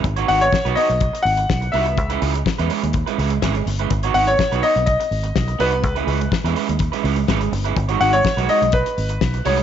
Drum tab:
HH |xxox-xoxxxox-xox|xxox-xoxxxox-xox|xxox-xoxxxox-xox|xxox-xoxxxox-xox|
SD |----o-------o---|----o-------o---|----o-------o---|----o-------o---|
BD |o---o---o---o---|o---o---o---o---|o---o---o---o---|o---o---o---o---|

HH |xxox-xoxxxox-xox|
SD |----o-------o---|
BD |o---o---o---o---|